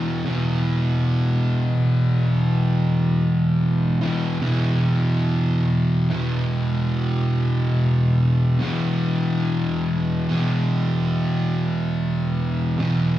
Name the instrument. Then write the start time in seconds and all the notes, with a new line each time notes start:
distorted electric guitar
Already playing: E2 B2 E3
0.24 E2 B2 E3
4.01 E2 B2 E3
4.40 E2 B2 E3
6.10 E2 B2 E3
8.59 E2 B2 E3
10.28 E2 B2 E3
12.78 E2 B2 E3